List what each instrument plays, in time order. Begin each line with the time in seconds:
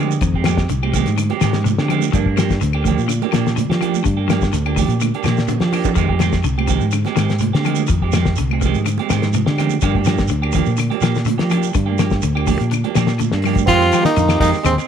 Already playing: fingered electric bass D3, clean electric guitar D#3 G#3
0.00 clean electric guitar F3 C4 G4
0.11 shekere
0.21 fingered electric bass F2, clean electric guitar D#3, kick, closed hi-hat, shekere
0.34 clean electric guitar G#3 C4 G4, kick
0.44 clean electric guitar D#3 F3 G#3 C4 G4, snare, closed hi-hat, high conga, claves, shekere
0.57 kick, snare, shekere
0.69 fingered electric bass C2, clean electric guitar D3, closed hi-hat, shekere
0.83 clean electric guitar G#3 C4 G4, high conga, claves
0.93 clean electric guitar D#3 G#3 C4 G4, kick, closed hi-hat, high conga, low conga, shekere
1.06 fingered electric bass G#2, snare, closed hi-hat, shekere
1.18 clean electric guitar D3, closed hi-hat, claves, shekere
1.30 clean electric guitar G#3 C4 G4, closed hi-hat, high conga
1.41 fingered electric bass G#2, clean electric guitar D#3 G#3 C4 G4, snare, closed hi-hat, claves, shekere
1.53 snare, closed hi-hat, low conga, shekere
1.64 clean electric guitar C3, snare, closed hi-hat, high conga, shekere
1.78 fingered electric bass D3, clean electric guitar G#3 C4 G4, snare
1.88 clean electric guitar D#3 F3 G#3 C4 G4, closed hi-hat, low conga, claves, shekere
2.01 closed hi-hat, high conga, shekere
2.12 fingered electric bass G2, clean electric guitar D3 F3 A#3 D4, muted clean electric guitar stroke, kick, closed hi-hat, shekere
2.26 clean electric guitar A#3 D4, kick
2.37 clean electric guitar F3 A#3 D4 G4, snare, closed hi-hat, high conga, claves, shekere
2.49 kick, snare, closed hi-hat, shekere
2.61 fingered electric bass D2, clean electric guitar D3, closed hi-hat, shekere
2.73 clean electric guitar A#3 D4 G4, claves
2.84 clean electric guitar D#3 F3 A#3 D4 G4, kick, closed hi-hat, high conga, low conga, shekere
2.98 fingered electric bass A#2, shekere
3.08 clean electric guitar D3, closed hi-hat, claves, shekere
3.22 clean electric guitar A#3 D4 G4, closed hi-hat, high conga
3.32 fingered electric bass A#2, clean electric guitar F3 A#3 D4 G4, snare, closed hi-hat, claves, shekere
3.47 snare, closed hi-hat, low conga, shekere
3.56 clean electric guitar D3, closed hi-hat, high conga, shekere
3.70 fingered electric bass F3, clean electric guitar A#3 D4 G4, snare, closed hi-hat
3.81 clean electric guitar F3 A#3 D4 G4, closed hi-hat, low conga, claves, shekere
3.94 high conga, shekere
4.04 fingered electric bass G2, clean electric guitar D3, kick, closed hi-hat, shekere
4.17 clean electric guitar A#3 D4 G4
4.28 clean electric guitar F3 A#3 D4 G4, snare, closed hi-hat, high conga, claves, shekere
4.42 kick, snare, shekere
4.53 fingered electric bass D2, clean electric guitar D3, snare, closed hi-hat, shekere
4.66 clean electric guitar A#3 D4 G4, high conga, claves
4.76 clean electric guitar D#3 F3 D4 G4, muted clean electric guitar stroke, kick, open hi-hat, high conga, low conga, shekere
4.88 fingered electric bass A#2, closed hi-hat, shekere
5.00 clean electric guitar D3, closed hi-hat, high conga, claves, shekere
5.14 clean electric guitar A#3 D4 G4, closed hi-hat
5.23 fingered electric bass A#2, clean electric guitar F3 A#3 D4 G4, snare, closed hi-hat, claves, shekere
5.37 snare, closed hi-hat, shekere
5.48 clean electric guitar D3, closed hi-hat, low conga, shekere
5.60 fingered electric bass F3, clean electric guitar A#3 D4 G4, snare, low conga
5.72 clean electric guitar F3 A#3 D4 G4, open hi-hat, low conga, claves, shekere
5.84 kick, closed hi-hat, low conga, shekere
5.95 fingered electric bass F2, clean electric guitar D#3 G#3 C4 G4, kick, closed hi-hat, shekere
6.08 clean electric guitar G#3 C4 G4, kick, high conga
6.19 clean electric guitar D#3 F3 G#3 C4 G4, snare, closed hi-hat, high conga, claves, shekere
6.33 kick, snare, closed hi-hat, shekere
6.44 fingered electric bass C2, clean electric guitar D3, closed hi-hat, shekere
6.57 clean electric guitar C4 G4, muted clean electric guitar stroke, high conga, claves
6.68 clean electric guitar D#3 G#3 C4 G4, kick, closed hi-hat, high conga, low conga, shekere
6.80 fingered electric bass G#2, shekere
6.91 clean electric guitar D3, closed hi-hat, claves, shekere
7.05 clean electric guitar G#3 C4 G4, snare, closed hi-hat, high conga
7.16 fingered electric bass G#2, clean electric guitar D#3 G#3 C4 G4, snare, closed hi-hat, claves, shekere
7.29 snare, closed hi-hat, shekere
7.39 clean electric guitar C3, closed hi-hat, high conga, shekere
7.53 fingered electric bass D3, clean electric guitar G#3 C4 G4, snare, closed hi-hat
7.64 clean electric guitar D#3 F3 G#3 C4 G4, closed hi-hat, low conga, claves, shekere
7.75 high conga, shekere
7.87 fingered electric bass F2, clean electric guitar D#3, kick, closed hi-hat, shekere
8.02 clean electric guitar G#3 C4 G4, kick
8.12 clean electric guitar D#3 F3 G#3 C4 G4, snare, closed hi-hat, high conga, claves, shekere
8.25 kick, snare, shekere
8.36 fingered electric bass C2, clean electric guitar D3, closed hi-hat, shekere
8.50 clean electric guitar C4, muted clean electric guitar stroke, high conga, claves
8.54 clean electric guitar G#3
8.61 clean electric guitar D#3, kick, closed hi-hat, high conga, low conga, shekere
8.65 clean electric guitar G#3 C4 G4
8.74 fingered electric bass G#2, closed hi-hat, shekere
8.86 clean electric guitar D3, closed hi-hat, claves, shekere
8.98 clean electric guitar G#3 C4 G4, closed hi-hat, high conga
9.10 fingered electric bass G#2, clean electric guitar D#3 G#3 C4 G4, snare, closed hi-hat, claves, shekere
9.22 snare, closed hi-hat, low conga, shekere
9.33 clean electric guitar C3, closed hi-hat, high conga, shekere
9.46 fingered electric bass D3, clean electric guitar G#3 G4, snare
9.58 clean electric guitar D#3 G#3 C4 G4, snare, closed hi-hat, low conga, claves, shekere
9.69 closed hi-hat, high conga, shekere
9.81 fingered electric bass G2, clean electric guitar D3 F3 A#3 D4 G4, kick, snare, closed hi-hat, shekere
9.94 clean electric guitar A#3 D4 G4, kick, high conga
10.05 clean electric guitar F3 A#3 D4 G4, snare, closed hi-hat, high conga, claves, shekere
10.18 kick, snare, closed hi-hat, shekere
10.28 fingered electric bass D2, clean electric guitar D3, closed hi-hat, shekere
10.42 clean electric guitar A#3 D4 G4, claves
10.52 clean electric guitar D#3 F3 A#3 D4 G4, kick, closed hi-hat, high conga, low conga, shekere
10.66 fingered electric bass A#2, shekere
10.77 clean electric guitar D3, closed hi-hat, claves, shekere
10.90 clean electric guitar A#3 D4 G4, closed hi-hat, high conga
11.01 fingered electric bass A#2, clean electric guitar F3 A#3 D4 G4, snare, closed hi-hat, claves, shekere
11.15 snare, closed hi-hat, shekere
11.25 clean electric guitar D3, closed hi-hat, high conga, shekere
11.38 fingered electric bass F3, clean electric guitar A#3 D4 G4, snare, closed hi-hat
11.50 clean electric guitar F3 A#3 D4 G4, closed hi-hat, low conga, claves, shekere
11.63 shekere
11.74 fingered electric bass G2, clean electric guitar D3, kick, closed hi-hat, shekere
11.86 clean electric guitar A#3 D4 G4, high conga
11.98 clean electric guitar F3 A#3 G4, muted clean electric guitar stroke, snare, closed hi-hat, high conga, claves, shekere
12.10 kick, snare, shekere
12.22 fingered electric bass D2, clean electric guitar D3, closed hi-hat, shekere
12.35 clean electric guitar A#3 D4 G4, high conga, claves
12.47 clean electric guitar D#3 A#3 D4 G4, kick, open hi-hat, high conga, low conga, shekere
12.60 fingered electric bass A#2, closed hi-hat, shekere
12.71 clean electric guitar D3, closed hi-hat, claves, shekere
12.84 clean electric guitar A#3 D4 G4, closed hi-hat, high conga
12.95 fingered electric bass A#2, clean electric guitar F3 A#3 D4 G4, snare, closed hi-hat, claves, shekere
13.07 snare, closed hi-hat, shekere
13.19 clean electric guitar D3, closed hi-hat, high conga, shekere
13.32 fingered electric bass G2, clean electric guitar A#3 D4, muted clean electric guitar stroke, snare
13.42 clean electric guitar F3 A#3 D4, open hi-hat, low conga, claves, shekere
13.46 clean electric guitar G4
13.55 kick, closed hi-hat, high conga, shekere
13.66 fingered electric bass F2, clean electric guitar D#3 G#3 C4 G4, trombone C4, tenor saxophone F4, kick, closed hi-hat, shekere
13.80 clean electric guitar G#3 C4 G4, closed hi-hat, shekere
13.92 clean electric guitar D#3 F3 G#3 C4 G4, closed hi-hat, claves, shekere
14.03 trombone A#3, tenor saxophone D#4, muted fingered electric bass stroke, snare, shekere
14.16 fingered electric bass F2, clean electric guitar D3, closed hi-hat, shekere
14.28 clean electric guitar C4 G4, muted clean electric guitar stroke, snare, closed hi-hat, claves, shekere
14.39 fingered electric bass F2, clean electric guitar D#3 G#3 C4 G4, trombone A#3, tenor saxophone D#4, kick, open hi-hat, shekere
14.53 snare, shekere
14.63 fingered electric bass D#2, clean electric guitar D3, trombone G#3, tenor saxophone C4, closed hi-hat, claves, shekere
14.78 clean electric guitar C4, snare, closed hi-hat, shekere